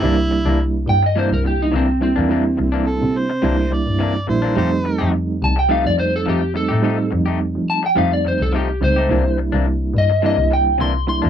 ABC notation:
X:1
M:4/4
L:1/16
Q:"Swing 16ths" 1/4=106
K:Cmix
V:1 name="Electric slide guitar"
z6 g _e c B G _E C2 C2- | C8- C2 z6 | z6 a g f d c A G2 A2- | A2 z4 a g f d c A G2 c2- |
c2 z4 _e2 e2 g2 c'2 c'2 |]
V:2 name="Harmonica"
E4- E z8 z3 | z4 A2 c4 d4 c2 | c4 z12 | z16 |
z16 |]
V:3 name="Reed electric piano"
[G,B,DE]6 z2 [G,B,DE]6 [G,B,DE]2 | [G,B,DE]6 z2 [G,B,DE]6 [G,B,DE]2 | [G,A,C_E]6 z2 [G,A,CE]6 [G,A,CE]2 | [G,A,C_E]6 z2 [G,A,CE]6 [G,A,CE]2 |
[G,B,DE]6 z2 [G,B,DE]6 [G,B,DE]2 |]
V:4 name="Clean electric guitar"
[C,E,B,D] z2 [E,B,D] z4 [C,E,B,D] z3 [C,E,B,D] z2 [E,B,D] | [C,E,B,D] z2 [E,B,D] z4 [C,E,B,D] z3 [C,E,B,D] z2 [E,B,D] | [F,A,_EG] z2 [A,EG] z4 [F,A,EG] z3 [F,A,EG] z2 [A,EG] | [F,A,_EG] z2 [A,EG] z4 [F,A,EG] z3 [F,A,EG] z2 [A,EG] |
[C,E,B,D] z2 [E,B,D] z4 [C,E,B,D] z3 [C,E,B,D] z2 [E,B,D] |]
V:5 name="Double bass" clef=bass
C,,3 C,,3 G,,3 C,,3 C,,3 E,,- | E,,2 C,,3 C,3 C,,2 C,, G,,3 B,,,2 | F,,3 F,,3 C,,3 F,,3 F,,3 A,,- | A,,2 F,,3 F,3 F,,2 F,, C,,3 _D,,2 |
C,,3 C,,3 G,,3 C,,3 C,,3 E,, |]